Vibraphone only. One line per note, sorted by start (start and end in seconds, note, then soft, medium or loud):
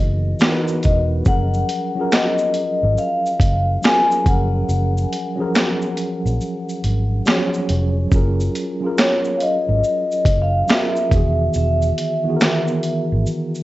0.84 1.03 D#5 medium
1.27 2.15 F#5 medium
2.13 3.00 D#5 medium
2.98 3.86 F5 medium
3.85 4.24 G#5 loud
4.27 7.65 F#5 medium
8.99 9.37 C#5 medium
9.37 9.41 F5 medium
9.42 10.44 D#5 medium
10.42 10.52 F5 loud
10.65 10.69 F5 medium
11.56 13.23 E5 medium